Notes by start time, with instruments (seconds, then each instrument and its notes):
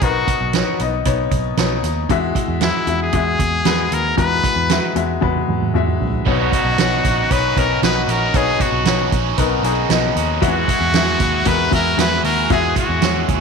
Already playing: upright piano B3 D#4 F#4 A#4 B4
0.01 picked electric bass B1, upright piano B2 B3 D#4 A#4, trumpet F#4, kick, closed hi-hat
0.28 kick, closed hi-hat
0.41 picked electric bass B1
0.53 upright piano B3 D#4 C#5, snare, closed hi-hat
0.79 picked electric bass B1, upright piano B3 D#4 D#5, closed hi-hat
1.05 picked electric bass B1, upright piano B3 D#4 C#5, kick, closed hi-hat
1.31 picked electric bass B1, kick, closed hi-hat
1.57 picked electric bass B1, upright piano B3 D#4 C#5, snare, closed hi-hat
1.83 picked electric bass D#2, snare, closed hi-hat
2.09 picked electric bass E2, upright piano E3 G#3 F#4 E5, kick, closed hi-hat
2.35 kick, closed hi-hat
2.48 picked electric bass E2
2.61 upright piano G#3 F#4 E5, trumpet E4, snare, closed hi-hat
2.87 picked electric bass E2, upright piano G#3 F#4 E5, closed hi-hat
3.02 trumpet G#4
3.13 picked electric bass E2, upright piano G#3 F#4 E5, kick, closed hi-hat
3.39 picked electric bass E2, kick, closed hi-hat
3.65 picked electric bass E2, upright piano G#3 F#4 B4, snare, closed hi-hat
3.91 picked electric bass D#2, trumpet A#4, closed hi-hat
4.17 picked electric bass E2, upright piano E3 G#3 F#4 A#5, trumpet B4, kick, closed hi-hat
4.44 kick, closed hi-hat
4.56 picked electric bass E2
4.69 upright piano G#3 F#4 E5, snare, closed hi-hat
4.95 picked electric bass E2, upright piano G#3 F#4 E5, closed hi-hat
5.21 picked electric bass E2, upright piano G#3 F#4 B4, kick, high tom
5.36 high tom
5.48 picked electric bass E2, mid tom
5.62 mid tom
5.74 picked electric bass E2, upright piano G#3 F#4 E5, mid tom
5.87 mid tom
6.00 picked electric bass A#1, floor tom
6.14 floor tom
6.26 picked electric bass B1, overdriven electric guitar B2 B3 C#4 D#4 F#4, upright piano B2 B3 D#4 C#5, trumpet F#4, kick, crash
6.51 overdriven electric guitar C#4 D#4 F#4, kick, closed hi-hat
6.65 picked electric bass B1
6.78 picked electric bass B1, overdriven electric guitar B2 B3 C#4 D#4 F#4, upright piano B3 D#4 C#5, snare, closed hi-hat
7.04 picked electric bass A#1, overdriven electric guitar C#4 D#4 F#4, kick, closed hi-hat
7.30 picked electric bass B1, upright piano B3 D#4 C#5, overdriven electric guitar B3 C#4 D#4 F#4, trumpet B4, kick, closed hi-hat
7.56 picked electric bass B1, upright piano B3 D#4 C#5, overdriven electric guitar C#4 D#4 F#4, trumpet A#4, kick, closed hi-hat
7.82 picked electric bass B1, overdriven electric guitar B2 B3 C#4 D#4 F#4, upright piano B3 D#4 F#4, trumpet B4, snare, closed hi-hat
8.04 picked electric bass A#1, trumpet B4
8.09 overdriven electric guitar C#4 D#4 F#4, trumpet A#4, closed hi-hat
8.34 picked electric bass B1, overdriven electric guitar B2 B3 C#4 D#4 F#4, upright piano B2 B3 D#4 C#5, trumpet G#4, kick, closed hi-hat
8.60 overdriven electric guitar C#4 D#4 F#4, trumpet F#4, kick, closed hi-hat
8.72 picked electric bass B1
8.85 picked electric bass B1, overdriven electric guitar B2 B3 C#4 D#4 F#4, upright piano B3 D#4 C#5, snare, closed hi-hat
9.12 picked electric bass A#1, overdriven electric guitar C#4 D#4 F#4, kick, closed hi-hat
9.38 picked electric bass B1, upright piano B3 D#4 A#4, overdriven electric guitar B3 C#4 D#4 F#4, kick, closed hi-hat
9.63 picked electric bass B1, upright piano B3 D#4 G#4, overdriven electric guitar C#4 D#4 F#4, closed hi-hat
9.89 picked electric bass B1, overdriven electric guitar B2 B3 C#4 D#4 F#4, upright piano B3 D#4 D#5, snare, closed hi-hat
10.16 picked electric bass D#2, overdriven electric guitar C#4 D#4 F#4, closed hi-hat
10.41 picked electric bass E2, upright piano E3 F#3 F#4 E5, overdriven electric guitar E3 B3 E4 F#4 G#4, trumpet F#4, kick, closed hi-hat
10.48 upright piano G#3
10.68 overdriven electric guitar E4 F#4 G#4, kick, closed hi-hat
10.81 picked electric bass E2
10.93 picked electric bass E2, overdriven electric guitar E3 B3 E4 F#4 G#4, upright piano G#3 F#4 E5, snare, closed hi-hat
11.20 picked electric bass D#2, overdriven electric guitar E4 F#4 G#4, kick, closed hi-hat
11.45 picked electric bass E2, upright piano G#3 F#4 A#4, overdriven electric guitar B3 E4 F#4 G#4, trumpet B4, kick, closed hi-hat
11.71 picked electric bass E2, upright piano G#3 F#4 E5, overdriven electric guitar E4 F#4 G#4, trumpet A#4, kick, closed hi-hat
11.97 picked electric bass E2, overdriven electric guitar E3 B3 E4 F#4 G#4, upright piano G#3 F#4 E5, trumpet B4, snare, closed hi-hat
12.24 picked electric bass D#2, overdriven electric guitar E4 F#4 G#4, trumpet A#4, open hi-hat
12.50 picked electric bass E2, overdriven electric guitar E3 B3 E4 F#4 G#4, upright piano E3 G#3 F#4 E5, trumpet G#4, kick, closed hi-hat
12.76 overdriven electric guitar E4 F#4 G#4, trumpet F#4, kick, closed hi-hat
12.89 picked electric bass E2
13.02 picked electric bass E2, overdriven electric guitar E3 B3 E4 F#4 G#4, upright piano G#3 F#4 C#5, snare, closed hi-hat
13.28 picked electric bass D#2, overdriven electric guitar E4 F#4 G#4, kick, closed hi-hat